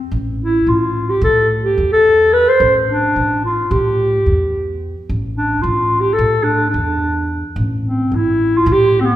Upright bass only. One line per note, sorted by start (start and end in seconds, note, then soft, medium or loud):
0.11 0.56 A1 medium
0.67 1.12 A1 medium
1.22 1.67 A2 medium
1.78 2.45 E2 medium
2.60 3.05 A1 medium
3.16 3.61 A1 medium
3.71 4.16 A2 medium
4.26 4.93 E2 medium
5.09 5.54 A1 medium
5.63 6.09 A1 medium
6.19 6.64 A2 medium
6.74 7.42 E2 medium
7.56 8.02 A1 medium
8.12 8.57 A1 medium
8.66 9.12 A2 medium